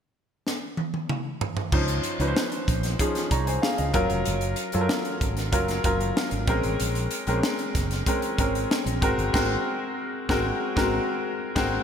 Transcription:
0.47 snare medium
0.77 high tom medium
0.94 high tom medium
1.09 mid tom medium
1.41 floor tom medium
1.57 floor tom medium
1.72 1.99 C#2 medium
1.72 2.12 F3 medium
1.72 2.12 C#4 medium
1.72 2.12 D#4 medium
1.72 2.12 C5 medium
1.72 kick loud
1.72 crash medium
1.88 closed hi-hat soft
2.04 closed hi-hat medium
2.20 2.33 C#2 medium
2.20 2.85 F3 medium
2.20 2.86 C#4 medium
2.20 2.86 D#4 medium
2.20 2.27 B4 medium
2.20 closed hi-hat soft
2.28 2.89 C5 medium
2.36 snare loud
2.52 closed hi-hat soft
2.68 2.94 A#1 medium
2.68 kick medium
2.68 closed hi-hat medium
2.83 snare soft
2.83 closed hi-hat medium
2.99 3.26 F3 medium
2.99 3.26 C#4 medium
2.99 3.26 D#4 medium
2.99 3.26 G#4 medium
2.99 kick medium
2.99 closed hi-hat medium
3.15 snare soft
3.15 closed hi-hat medium
3.31 3.57 C2 medium
3.31 3.47 C#5 medium
3.31 3.46 A#5 medium
3.31 kick medium
3.31 closed hi-hat medium
3.47 3.62 C5 medium
3.47 3.62 G#5 medium
3.47 closed hi-hat soft
3.62 3.78 G#4 medium
3.62 3.77 F5 medium
3.62 snare loud
3.78 3.92 C#2 medium
3.78 4.08 D#5 medium
3.78 closed hi-hat medium
3.93 4.07 F#1 medium
3.93 4.59 F#3 medium
3.93 4.59 C#4 medium
3.93 4.60 F4 medium
3.93 4.60 A#4 loud
3.93 kick medium
3.93 closed hi-hat medium
4.10 4.24 F1 medium
4.10 closed hi-hat soft
4.26 4.53 F#1 loud
4.26 closed hi-hat medium
4.41 closed hi-hat soft
4.56 closed hi-hat medium
4.72 4.87 F#2 loud
4.72 5.39 F#3 medium
4.72 5.39 C#4 medium
4.72 5.39 F4 medium
4.72 4.81 A4 medium
4.72 closed hi-hat soft
4.81 5.43 A#4 medium
4.89 snare loud
5.05 closed hi-hat soft
5.21 5.53 G#1 medium
5.21 kick medium
5.21 closed hi-hat medium
5.37 snare soft
5.37 closed hi-hat soft
5.52 5.79 F#1 medium
5.52 5.79 F#3 medium
5.52 5.79 C#4 medium
5.52 5.79 F4 medium
5.52 5.79 A#4 medium
5.52 kick medium
5.52 closed hi-hat medium
5.68 snare soft
5.68 closed hi-hat medium
5.84 6.11 F#1 medium
5.84 6.48 F#3 medium
5.84 6.47 C#4 medium
5.84 6.48 F4 medium
5.84 6.47 A#4 medium
5.84 kick medium
5.84 closed hi-hat medium
6.01 closed hi-hat soft
6.17 snare loud
6.31 6.45 G#1 medium
6.31 closed hi-hat medium
6.47 6.61 A#1 medium
6.47 7.13 G#3 medium
6.47 7.13 C4 medium
6.47 7.14 C#4 medium
6.47 7.14 A#4 loud
6.47 kick loud
6.47 closed hi-hat medium
6.63 6.77 A1 medium
6.63 closed hi-hat soft
6.80 7.07 A#1 medium
6.80 closed hi-hat medium
6.95 closed hi-hat medium
7.11 closed hi-hat medium
7.27 7.40 A#1 medium
7.27 7.93 G#3 medium
7.27 7.93 C4 medium
7.27 7.93 C#4 medium
7.27 7.93 A#4 medium
7.27 closed hi-hat soft
7.43 snare loud
7.59 closed hi-hat soft
7.75 8.01 F#1 loud
7.75 kick medium
7.75 snare soft
7.75 closed hi-hat medium
7.91 snare soft
7.91 closed hi-hat soft
8.06 8.33 G#3 medium
8.06 8.33 C4 medium
8.06 8.33 C#4 medium
8.06 8.34 A#4 medium
8.06 kick medium
8.06 closed hi-hat medium
8.22 closed hi-hat medium
8.38 8.65 G#1 medium
8.38 9.00 G#3 medium
8.38 9.00 C4 medium
8.38 9.02 C#4 medium
8.38 9.01 A#4 medium
8.38 kick medium
8.38 closed hi-hat medium
8.55 closed hi-hat soft
8.71 snare loud
8.86 8.99 A#1 medium
8.86 closed hi-hat medium
9.01 9.15 G#1 medium
9.01 9.32 G#3 medium
9.01 9.32 C4 medium
9.01 9.32 F#4 medium
9.01 9.33 A#4 loud
9.01 kick medium
9.01 closed hi-hat medium
9.18 9.31 G1 medium
9.18 closed hi-hat soft
9.33 9.55 G#1 loud
9.33 9.55 G#3 medium
9.33 9.55 C4 medium
9.33 9.55 F#4 medium
9.33 9.56 A#4 medium
9.33 kick loud
9.33 snare loud
9.33 crash medium
10.29 10.51 G#1 loud
10.29 10.50 G#3 medium
10.29 10.51 C4 medium
10.29 10.51 F#4 medium
10.29 10.51 A#4 medium
10.29 kick loud
10.29 snare loud
10.76 10.98 G#1 loud
10.76 10.98 G#3 medium
10.76 10.98 C4 medium
10.76 10.98 F#4 medium
10.76 10.98 A#4 loud
10.76 kick loud
10.76 snare medium
11.55 11.77 G#1 medium
11.55 11.77 G#3 loud
11.55 11.77 C4 medium
11.55 11.78 F#4 loud
11.55 11.78 A#4 medium
11.55 kick loud
11.55 snare loud
11.55 crash medium

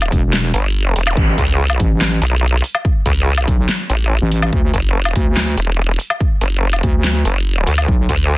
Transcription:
0.00 0.10 G1 loud
0.00 closed hi-hat soft
0.00 low woodblock medium
0.12 0.52 E1 loud
0.12 kick loud
0.12 closed hi-hat medium
0.33 snare loud
0.54 0.94 G1 loud
0.54 closed hi-hat medium
0.96 1.15 E1 loud
0.96 open hi-hat medium
1.07 zap medium
1.07 low woodblock medium
1.17 1.36 A1 loud
1.17 kick loud
1.38 1.78 C#2 loud
1.38 kick medium
1.38 closed hi-hat medium
1.70 closed hi-hat soft
1.70 low woodblock medium
1.80 2.20 A1 loud
1.80 kick loud
1.80 closed hi-hat medium
2.01 snare loud
2.22 2.62 B1 loud
2.22 closed hi-hat medium
2.64 open hi-hat medium
2.75 low woodblock medium
2.85 kick loud
3.06 3.46 C#2 loud
3.06 kick medium
3.06 closed hi-hat medium
3.38 closed hi-hat soft
3.38 low woodblock medium
3.48 3.67 B1 loud
3.48 kick loud
3.48 closed hi-hat medium
3.69 snare loud
3.90 4.20 A1 loud
3.90 closed hi-hat medium
4.22 4.51 A1 medium
4.32 open hi-hat medium
4.42 low woodblock medium
4.53 4.72 D2 loud
4.53 kick loud
4.74 5.14 F#1 medium
4.74 kick medium
4.74 closed hi-hat medium
5.05 closed hi-hat soft
5.05 low woodblock medium
5.16 5.56 D2 loud
5.16 kick loud
5.16 closed hi-hat medium
5.37 snare loud
5.57 5.98 E1 medium
5.57 closed hi-hat medium
5.99 open hi-hat medium
6.10 low woodblock medium
6.20 kick loud
6.41 6.82 F#1 medium
6.41 closed hi-hat medium
6.73 closed hi-hat soft
6.73 low woodblock medium
6.83 7.24 D2 loud
6.83 kick loud
6.83 closed hi-hat medium
7.04 snare loud
7.25 7.66 F#1 loud
7.25 closed hi-hat medium
7.67 7.87 D2 loud
7.67 open hi-hat medium
7.78 low woodblock medium
7.88 8.08 B1 loud
7.88 kick loud
8.09 8.38 D2 loud
8.09 kick medium
8.09 closed hi-hat medium

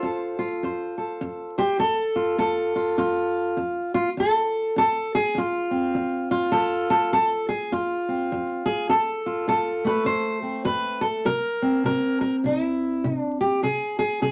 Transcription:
0.00 0.58 F2 medium
0.00 0.37 F4 medium
0.00 0.97 A4 soft
0.00 0.44 C5 loud
0.39 1.78 F4 medium
0.63 1.17 F2 medium
0.63 1.57 C5 soft
0.98 1.58 A4 soft
1.21 1.76 F2 medium
1.58 1.79 G4 loud
1.58 1.78 C5 medium
1.79 2.35 F2 medium
1.79 2.38 A4 loud
2.16 2.75 F4 medium
2.38 2.94 F2 medium
2.38 3.58 A4 loud
2.76 2.98 F4 medium
2.98 3.53 F2 medium
2.98 3.93 F4 medium
3.57 4.12 F2 medium
3.94 4.08 F4 medium
4.17 4.72 F2 medium
4.17 4.77 A4 loud
4.76 5.31 F2 medium
4.76 5.13 A4 loud
5.15 5.37 G#4 loud
5.35 5.90 F2 medium
5.35 6.30 F4 medium
5.71 6.51 C4 soft
5.95 6.49 F2 medium
6.31 7.13 F4 loud
6.52 7.08 F2 medium
6.52 6.89 A4 loud
6.90 7.12 A4 medium
7.13 7.67 F2 medium
7.13 7.48 A4 loud
7.49 7.72 G#4 medium
7.72 8.26 F2 medium
7.72 8.90 F4 medium
8.08 8.65 C4 soft
8.32 8.86 F2 medium
8.66 8.89 G#4 loud
8.89 9.44 F2 medium
8.89 9.47 A4 loud
9.26 9.86 F4 soft
9.48 10.03 F2 medium
9.48 10.42 A4 loud
9.84 11.24 A3 medium
9.84 10.06 B4 loud
10.05 10.61 F2 medium
10.05 10.65 C5 medium
10.42 11.01 C4 soft
10.65 11.21 F2 medium
10.65 11.02 B4 loud
11.01 11.26 A4 loud
11.25 11.81 C3 medium
11.25 11.84 A#4 loud
11.62 13.61 C4 soft
11.84 12.40 C3 medium
11.84 12.20 A#4 loud
12.21 12.35 A#4 medium
12.44 12.99 C3 medium
12.44 13.19 E4 medium
13.04 13.59 C3 medium
13.19 13.40 D4 medium
13.41 13.63 G4 medium
13.63 14.18 C3 medium
13.63 13.98 G#4 loud
13.99 14.21 G#4 medium
14.22 14.32 C3 medium
14.22 14.32 G#4 medium

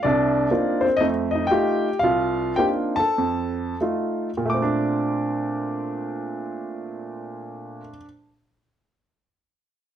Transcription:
0.03 0.46 C2 medium
0.03 0.46 C3 medium
0.03 0.50 D4 medium
0.03 0.86 D5 medium
0.51 0.85 A#3 medium
0.51 0.83 C4 soft
0.51 0.86 D4 soft
0.51 0.86 D#4 soft
0.51 0.86 F4 medium
0.81 0.99 C5 medium
0.85 1.00 C4 medium
0.97 1.08 D#4 medium
0.97 1.05 D#5 medium
1.01 1.44 F2 medium
1.01 1.44 A3 medium
1.31 1.50 D#5 medium
1.35 1.50 D#4 medium
1.47 1.97 G5 medium
1.51 1.87 A3 soft
1.51 1.88 D#4 soft
1.51 1.88 F4 medium
1.51 1.99 G4 medium
1.99 2.51 C2 medium
1.99 2.58 F5 medium
2.04 2.55 F4 medium
2.56 2.99 A#3 soft
2.56 2.99 C4 soft
2.56 2.99 D4 soft
2.56 2.99 D#4 soft
2.56 2.99 F4 soft
2.56 2.68 G4 medium
2.56 2.65 G5 medium
2.96 3.78 A4 medium
2.96 3.76 A5 medium
3.18 3.73 F2 medium
3.81 4.29 A3 soft
3.81 4.29 D#4 soft
3.81 4.29 F4 soft
4.37 7.80 A#2 medium
4.45 7.88 A3 medium
4.50 7.88 D6 medium
4.54 7.97 C4 medium
4.62 8.05 D4 medium

